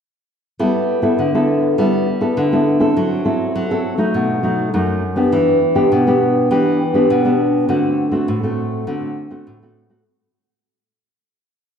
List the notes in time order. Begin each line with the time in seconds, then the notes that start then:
0.59 G3 B3 E4 A4
1.02 B3 E4 A4
1.19 D3
1.34 B3 E4 A4
1.78 G3 B3 E4 A4
2.21 B3 E4 A4
2.37 D3
2.52 B3 E4 A4
2.80 C4 E4 A4
2.97 F#3
3.25 C4 E4 A4
3.56 F#3
3.71 C4 E4 A4
3.98 F#3 A3 D#4
4.14 B2
4.43 F#3 A3 D#4
4.74 F#2 F#3 A3 D#4
5.16 B3 D4 G4
5.32 E3
5.75 B3 D4 G4
5.92 B2
6.07 B3 D4 G4
6.51 E3 B3 D4 G4
6.94 B3 D4 G4
7.10 B2
7.25 B3 D4 G4
7.69 D3 A3 C4 F#4
8.11 A3 C4 F#4
8.28 A2
8.43 A3 C4 F#4
8.87 D3 A3 C4 F#4
9.30 A3 C4 F#4
9.47 A2
9.62 A3 C4 F#4
9.89 A3 C4 F#4